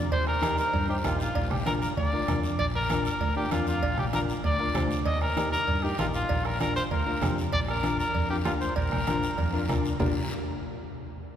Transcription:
Already playing: F2
0.12 D#2 C5, bombo low, cowbell, high conga, long guiro
0.27 A#4, bombo rim
0.41 D#4 G4 A#4, bombo rim, cowbell, high conga, short guiro
0.58 A#4, short guiro
0.73 G2, bombo low, cowbell, high conga, long guiro
0.88 D#4 G4 C5
1.04 A#1 D#4 F4 G4 A#4, bombo low, bombo rim, cowbell, high conga, short guiro
1.20 F4, short guiro
1.35 A#1, bombo low, cowbell, high conga, long guiro
1.51 G4, bombo rim, low conga
1.66 D4 F4 A#4, bombo rim, cowbell, high conga, short guiro
1.81 A#4, short guiro
1.97 D2 D5, bombo low, cowbell, high conga, long guiro
2.13 D4 F4 A#4
2.28 F2 D4 F4 A#4, bombo low, bombo rim, cowbell, high conga, low conga, short guiro
2.43 short guiro
2.59 A#1 D5, bombo low, cowbell, high conga, long guiro
2.75 A#4
2.90 D4 F4 A#4, bombo rim, cowbell, high conga, short guiro
3.05 A#4, short guiro
3.20 D2, bombo low, cowbell, high conga, long guiro
3.36 D4 F4 G4 A#4
3.51 F2 D4 F4 A#4, bombo low, bombo rim, cowbell, high conga, short guiro
3.67 F4, short guiro
3.82 A#1, bombo low, cowbell, high conga, long guiro
3.98 G4, bombo rim, low conga
4.13 D4 F4 A#4, bombo rim, cowbell, high conga, short guiro
4.29 short guiro
4.44 D2 D5, bombo low, cowbell, high conga, long guiro
4.59 D4 F4 A#4
4.74 D2 D4 F4 C5, bombo low, bombo rim, cowbell, high conga, low conga, low timbale, short guiro
4.91 short guiro
5.06 D#2 D#5, bombo low, cowbell, high conga, long guiro
5.22 A#4, bombo rim
5.36 D#4 G4 A#4, bombo rim, cowbell, high conga, short guiro
5.52 A#4, short guiro
5.67 G2, bombo low, cowbell, high conga, long guiro
5.83 D#4 G4 A#4
5.98 A#1 D#4 F4 G4 A#4, bombo rim, cowbell, high conga, short guiro
6.14 F4, short guiro
6.29 A#1, bombo low, cowbell, high conga, long guiro
6.45 A#4, bombo rim
6.60 D4 F4 A#4, bombo rim, cowbell, high conga, short guiro
6.76 C5, short guiro
6.91 D2 A#4, bombo low, cowbell, high conga, long guiro
7.06 D4 F4 A#4
7.21 F2 D4 F4 G4, bombo rim, cowbell, high conga, low conga, low timbale, short guiro
7.38 short guiro
7.53 A#1 D5, bombo low, cowbell, high conga, long guiro
7.68 A#4, bombo rim
7.83 D4 F4 A#4, bombo rim, cowbell, high conga, short guiro
7.99 A#4, short guiro
8.14 F2, bombo low, cowbell, high conga, long guiro
8.30 D4 F4 G4 A#4
8.45 D2 D4 F4 A#4, bombo rim, cowbell, high conga, low timbale, short guiro
8.61 C5, short guiro
8.76 A#1 A#4, bombo low, cowbell, high conga, long guiro
8.92 bombo rim, low conga
9.07 D4 F4 A#4, bombo rim, cowbell, high conga, short guiro
9.23 short guiro
9.38 F2, bombo low, cowbell, high conga, long guiro
9.53 D4 F4 A#4
9.68 D2 D4 F4 A#4, bombo low, bombo rim, cowbell, high conga, low conga, short guiro
9.85 short guiro
10.00 A#1 D4 F4 A#4, bombo low, low conga, low timbale, long guiro

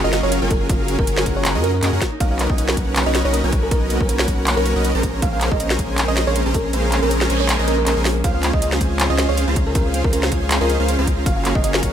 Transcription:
Already playing: F#3 A#3 C#4 F4 G#4 A#4
0.04 F#1 C#4 F4 F#4 G#4 A#4 D#5
0.13 A#3 D#5, snare, closed hi-hat
0.23 F#1 C#4 F4 F#4 G#4 A#4 C#5 F5
0.32 C#4, closed hi-hat
0.42 F#1 C#4 F4 F#4 G#4 A#4 G#5
0.51 A#4, kick, closed hi-hat
0.61 F4
0.69 F#1 A#3 C#4 F#4 G#4 A#4 F5, kick, closed hi-hat
0.80 F4
0.88 C#4, closed hi-hat
0.99 F#1 C#4 F#4 G#4 A#4 G#5, kick
1.07 closed hi-hat
1.18 F4, snare
1.26 F#1 A#3 C#4 F#4 G#4 A#4 F#5, kick, closed hi-hat
1.36 F4 C#5
1.45 C#4, clap, closed hi-hat
1.55 F#2 C#4 F4 F#4 G#4 A#4 D#5
1.64 F#4 A#4, closed hi-hat
1.74 C#4 A#4
1.83 F#2 A#3 C#4 F#4 G#4 A#4 D#5, clap, closed hi-hat
1.93 F#2 C#4 F#4 G#4 A#4 F#5
2.02 A#3 D#4 A#4, kick, snare, closed hi-hat
2.12 D#4
2.20 B1 A#3 C#4 F#4 A#4 B4 D#5 F5, kick, closed hi-hat
2.31 C#4 F5
2.39 A#3, clap, closed hi-hat
2.49 B1 C#4 F#4 A#4 B4 D#5 G#5, kick
2.58 B3 D#5, closed hi-hat
2.68 C#4, snare
2.77 B1 A#3 C#4 F#4 A#4 B4 F#5, kick, closed hi-hat
2.87 C#4
2.96 A#3, clap, closed hi-hat
3.06 B1 C#4 F#4 A#4 B4 C#5 D#5
3.15 B3 D#5, snare, closed hi-hat
3.25 B1 C#4 F#4 A#4 B4 C#5 D#5
3.33 A#3, closed hi-hat
3.44 B1 C#4 F#4 A#4 B4 G#5
3.52 A#3, kick, closed hi-hat
3.63 C#4 A#4
3.71 B1 B3 C#4 F#4 A#4 B4 D#5, kick, closed hi-hat
3.82 C#4
3.90 A#3, closed hi-hat
4.00 B1 C#4 F#4 A#4 B4 G#5, kick
4.09 A#3 A#4, closed hi-hat
4.19 C#4, snare
4.28 B1 B3 C#4 F#4 A#4 B4 F#5, kick, closed hi-hat
4.38 C#4
4.47 A#3, clap, closed hi-hat
4.57 B1 C#4 F#4 A#4 B4 C#5
4.66 A#3, closed hi-hat
4.76 B1 C#4 F#4 A#4 B4 D#5
4.85 B3, closed hi-hat
4.95 A#1 C#4 G#4 A#4 C5 A#5
5.03 G#3 A#3, kick, closed hi-hat
5.14 C#4
5.22 A#1 A#3 C#4 G#4 A#4 C5 F5, kick, closed hi-hat
5.33 C#4 F5
5.41 C4, clap, closed hi-hat
5.51 A#1 C#4 G#4 A#4 C5 D#5 A#5, kick
5.60 A#3 D#5, closed hi-hat
5.70 C#4, snare
5.79 A#1 A#3 C#4 G#4 A#4 C5 G#5, kick, closed hi-hat
5.89 C#4
5.98 C4, clap, closed hi-hat
6.08 A#1 C#4 G#4 A#4 C5 D#5
6.17 A#3 D#5, snare, closed hi-hat
6.27 A#1 C#4 G#4 A#4 C5 C#5 F5
6.35 A#3, closed hi-hat
6.46 A#1 C#4 G#4 A#4 C5 A#5
6.54 C4 A#4, kick, closed hi-hat
6.65 C#4
6.73 A#1 A#3 C#4 G#4 A#4 C5 F5, closed hi-hat, noise sweep
6.84 C#4
6.92 A#3, clap, closed hi-hat
7.02 A#1 C#4 G#4 A#4 C5 A#5
7.11 C4, closed hi-hat
7.21 C#4, snare
7.30 A#1 A#3 C#4 G#4 A#4 C5 G#5, closed hi-hat
7.40 C#4 C#5
7.49 A#3, clap, closed hi-hat
7.59 A#1 C#4 G#4 A#4 C5 D#5
7.68 C4 A#4, closed hi-hat
7.78 C#4 A#4
7.86 A#1 A#3 C#4 G#4 A#4 C5 D#5, clap, closed hi-hat
7.97 A#1 C#4 G#4 A#4 C5 G#5
8.05 A#3, snare, open hi-hat
8.16 C#4
8.24 C#2 C#3 C4 C#4 F4 G#4 C5 F5, kick, closed hi-hat
8.34 F4 F5
8.43 C#4, clap, closed hi-hat
8.53 C#2 C#4 F4 G#4 C5 D#5 A#5, kick
8.62 C4 D#5, closed hi-hat
8.72 G#4, snare
8.81 C#2 C4 C#4 F4 G#4 C5 G#5, kick, closed hi-hat
8.91 F4
9.00 C#4, clap, closed hi-hat
9.10 C#2 C#4 F4 G#4 C5 D#5
9.19 C4, snare, closed hi-hat
9.29 C#2 C#4 F4 G#4 C5 C#5 F5
9.37 C4, closed hi-hat
9.47 C#2 C#4 F4 G#4 C5 A#5
9.56 C#4, kick, closed hi-hat
9.67 F4 A#4
9.75 C#2 C4 C#4 F4 G#4 A#4 C5 F5, kick, closed hi-hat
9.86 G#4
9.94 C4, closed hi-hat
10.04 C#2 C#4 F4 G#4 A#4 C5 A#5, kick
10.13 C#4 A#4, closed hi-hat
10.23 F4, snare
10.32 C#2 C4 C#4 F4 G#4 C5 G#5, kick, closed hi-hat
10.42 G#4
10.51 C4, clap, closed hi-hat
10.61 C#2 C#4 F4 G#4 A#4 C5 D#5
10.70 C#4, closed hi-hat
10.80 C#2 C#4 F4 G#4 C5 F5
10.88 C4, closed hi-hat
10.99 C#2 C#4 F4 G#4 C5 A#5
11.07 C4, kick, closed hi-hat
11.18 F4
11.26 F#1 F#3 C#4 F#4 G#4 A#4 F5, kick, closed hi-hat
11.36 F4 F5
11.45 A#3, clap, closed hi-hat
11.55 F#1 C#4 F#4 G#4 A#4 D#5 G#5, kick
11.64 A#3 D#5, closed hi-hat
11.74 F4, snare
11.83 F#1 C#4 F#4 G#4 A#4 F#5, kick, closed hi-hat

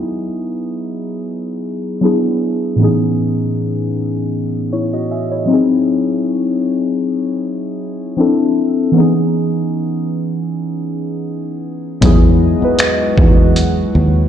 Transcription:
Already playing: F#3 B3 D#4 E4 G#4
2.01 F#3 B3 D4 E4 G#4
2.76 A2 E3 B3
2.81 C#4 D#4 G#4
4.73 E4 C#5
4.93 F#4 D#5
5.11 G#4 E5
5.32 E4 C#5
5.45 F#3 C4 D#4
5.51 E4 G#4
8.17 F3 C4 D4 E4 A4
8.92 E3 B3 C#4
8.98 D#4 G#4
12.01 E2 F#3 G#3 B3 D#4 E4 F#4 G#4 D#5, kick, closed hi-hat
12.61 F#3 B3 D#4 E4 B4, muted fingered electric bass stroke
12.79 finger snap, closed hi-hat
13.17 E2 F#3 B3 D#4 E4 G#4, kick
13.56 closed hi-hat
13.95 D#2

